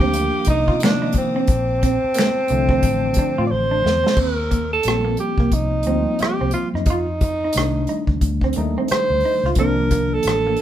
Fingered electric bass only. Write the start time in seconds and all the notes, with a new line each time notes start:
Already playing: D2
0.48 C2
0.69 C3
1.49 A#1
2.04 muted fingered electric bass stroke
2.50 C2
2.84 A1
3.18 muted fingered electric bass stroke
3.39 A2
3.51 A1
3.85 E2
4.18 D#2
4.85 A#1
5.38 C2
5.53 C2
5.86 D2
6.21 muted fingered electric bass stroke
6.41 C2
6.74 F#2
6.87 F2
7.56 C2
8.08 D2
8.22 D2
8.57 D#2
8.91 muted fingered electric bass stroke
9.10 D2
9.43 C#2
9.57 C2
10.25 A1